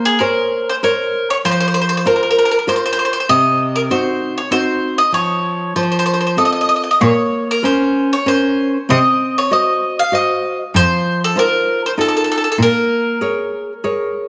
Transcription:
Already playing: A#3
0.05 G#4
0.19 A#4 C5 C#5
0.69 C5
0.83 A#4 C5 C#5
1.30 C#5
1.45 F3 C5
1.51 C5
1.60 C5
1.68 C5
1.74 C5
1.82 C5
1.89 C5
1.97 C5
2.05 F4 A#4 C5
2.16 A#4
2.23 A#4
2.31 A#4
2.39 A#4
2.45 A#4
2.51 A#4
2.59 A#4
2.67 F4 A#4 C5
2.76 C5
2.86 C5
2.93 C5
2.99 C5
3.05 C5
3.13 C5
3.20 C5
3.29 C3 D#5
3.76 A#4
3.90 C4 D#4 F#4 C5
4.38 C#5
4.51 C4 D#4 F#4 C5
4.98 D#5
5.12 F3 C#5
5.76 F3 C5
5.83 C5
5.92 C5
5.99 C5
6.06 C5
6.13 C5
6.21 C5
6.27 C5
6.37 C4 F4 A4 D#5
6.45 D#5
6.52 D#5
6.61 D#5
6.69 D#5
6.76 D#5
6.84 D#5
6.91 D#5
7.01 A#2 A#3 C#5
7.51 A#4
7.63 C#4 A#4 C5
8.13 C#5
8.26 C#4 A#4 C5
8.89 C3 C4 D#5
9.38 C#5
9.51 F#4 C5 D#5
9.99 F5
10.12 F#4 C5 D#5
10.74 F2 F3 C5
11.24 A4
11.36 D#4 F4 A#4 C5
11.86 C5
11.97 D#4 F4 A4
12.08 A4
12.17 A4
12.24 A4
12.32 A4
12.37 A4
12.44 A4
12.52 A4
12.58 A#2 A#3
12.62 A#4
13.21 G#4 A#4 C#5
13.84 G#4 A#4 C#5

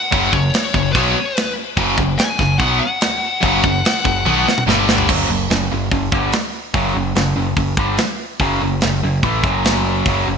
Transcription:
Already playing: F#5
0.11 F#1 F#2 C#3 F#3, kick, crash
0.31 F#1 F#2 C#3 C#5, kick
0.54 snare, crash
0.74 F#1 F#2 C#3, kick
0.93 B1 B2 F#3 C#5, kick, crash
0.97 B3
1.37 B4, snare, crash
1.77 F#1 F#2 C#3 F#3, kick, crash
1.98 F#1 F#2 C#3, kick
2.19 G#5, snare, crash
2.39 F#1 F#2 C#3, kick, snare
2.59 B1 B2 F#3 B3 F#5, kick, crash
2.80 F#5
3.01 snare, crash
3.43 F#1 F#2 C#3 F#3, kick, crash
3.63 F#1 F#2 C#3, kick
3.85 snare, crash
4.05 F#1 F#2 C#3, kick
4.25 B1 B2 F#3 B3, high tom
4.49 snare
4.58 mid tom
4.67 G1 G2 D3 G3, snare
4.89 snare
4.98 floor tom
5.08 F#1 F#2 C#3 F#3, kick, crash
5.29 F#1 F#2 C#3
5.50 F#1 F#2 C#3, snare, open hi-hat
5.72 F#1 F#2 C#3
5.92 F#1 F#2 C#3, kick, open hi-hat
6.12 G1 G2 D3 G3, kick
6.32 snare, open hi-hat
6.74 F#1 F#2 C#3 F#3, kick, open hi-hat
6.94 F#1 F#2 C#3
7.15 F#1 F#2 C#3, snare, open hi-hat
7.36 F#1 F#2 C#3
7.57 F#1 F#2 C#3, kick, open hi-hat
7.77 G1 G2 D3 G3, kick
7.97 snare, open hi-hat
8.39 F#1 F#2 C#3 F#3, kick, open hi-hat
8.61 F#1 F#2 C#3
8.81 F#1 F#2 C#3, snare, open hi-hat
9.03 F#1 F#2 C#3
9.23 A1 A2 E3 A3, kick, open hi-hat
9.43 F#1 F#2 C#3 F#3, kick
9.65 snare, open hi-hat
10.06 F#1 F#2 C#3 F#3, kick, open hi-hat
10.27 F#1 F#2 C#3

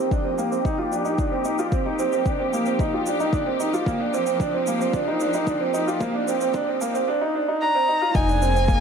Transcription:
Already playing: F3 A#3 D#4 G4
0.11 D4, kick, shaker
0.25 C4
0.38 A#3, shaker
0.51 C4, shaker
0.65 D#4, kick, shaker
0.78 F4
0.92 D4, shaker
1.05 D#4, shaker
1.18 D4, kick, shaker
1.32 C4
1.45 D#4, shaker
1.58 F4, shaker
1.72 C4, kick, shaker
1.86 D#4
1.99 C4, shaker
2.12 C4, shaker
2.26 D4, kick, shaker
2.40 C4
2.53 A#3, shaker
2.66 C4, shaker
2.79 D#4, kick, shaker
2.93 F4
3.06 D4, shaker
3.20 D#4, shaker
3.33 D4, kick, shaker
3.47 C4
3.60 D#4, shaker
3.73 F4, shaker
3.86 F3 A#3, kick, shaker
4.00 D4
4.14 C4, shaker
4.26 C4, shaker
4.40 D4, kick, shaker
4.54 C4
4.67 A#3, shaker
4.81 C4, shaker
4.93 D4, kick, shaker
5.07 D#4
5.20 D4, shaker
5.33 D#4, shaker
5.47 D4, kick, shaker
5.60 C4
5.74 D#4, shaker
5.87 F4, shaker
6.01 A#3, kick, shaker
6.14 D4
6.28 C4, shaker
6.41 C4, shaker
6.54 D4, kick, shaker
6.68 C4
6.81 A#3, shaker
6.94 C4, shaker
7.08 D4
7.21 D#4
7.35 D4
7.48 D#4
7.62 D4 A#5
7.75 C4
7.88 D#4
8.02 F4
8.15 F1 D#4 G#5, kick, shaker
8.23 A#3
8.28 D4 G#4, shaker
8.42 C4, shaker
8.55 C4, shaker
8.68 A#3 D#4, kick, shaker

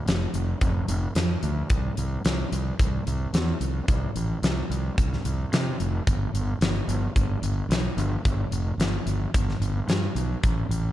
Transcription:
0.06 F1, snare, closed hi-hat
0.33 F1, closed hi-hat
0.61 F1, kick, closed hi-hat
0.88 F1, closed hi-hat
1.15 F2, snare, closed hi-hat
1.43 D2, closed hi-hat
1.70 C2, kick, closed hi-hat
1.97 C2, closed hi-hat
2.25 C2, snare, closed hi-hat
2.52 C2, closed hi-hat
2.79 C2, kick, closed hi-hat
3.06 C2, closed hi-hat
3.33 E2, snare, closed hi-hat
3.60 C2, closed hi-hat
3.88 C2, kick, closed hi-hat
4.15 A1, closed hi-hat
4.42 C2, snare, closed hi-hat
4.70 C2, closed hi-hat
4.98 C2, kick, closed hi-hat
5.13 snare
5.25 C2, closed hi-hat
5.53 C3, snare, closed hi-hat
5.80 F1, closed hi-hat
6.07 G1, kick, closed hi-hat
6.34 G1, closed hi-hat
6.61 G1, snare, closed hi-hat
6.88 G1, closed hi-hat
7.15 G1, kick, closed hi-hat
7.42 G1, closed hi-hat
7.69 B1, snare, closed hi-hat
7.96 G1, closed hi-hat
8.25 G1, kick, closed hi-hat
8.51 F1, closed hi-hat
8.78 G1, snare, closed hi-hat
9.06 G1, closed hi-hat
9.34 G1, kick, closed hi-hat
9.49 snare
9.60 G1, closed hi-hat
9.88 G2, snare, closed hi-hat
10.15 B1, closed hi-hat
10.43 A1, kick, closed hi-hat
10.69 A1, closed hi-hat

